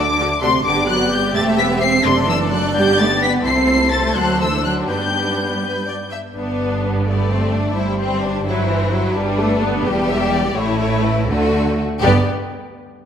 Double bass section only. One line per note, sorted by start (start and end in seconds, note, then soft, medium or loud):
0.00 0.57 D2 loud
0.66 1.32 G1 medium
1.35 2.05 E1 loud
2.05 2.75 F#1 loud
2.75 3.45 G1 loud
3.45 4.15 C2 loud
4.15 4.89 D2 medium
4.88 6.15 G2 medium
6.35 7.72 G1 medium
7.76 9.13 G1 loud
9.16 9.84 G1 loud
9.86 10.56 E1 loud
10.56 11.27 A1 loud
11.28 11.82 D2 loud
12.02 12.30 G1 loud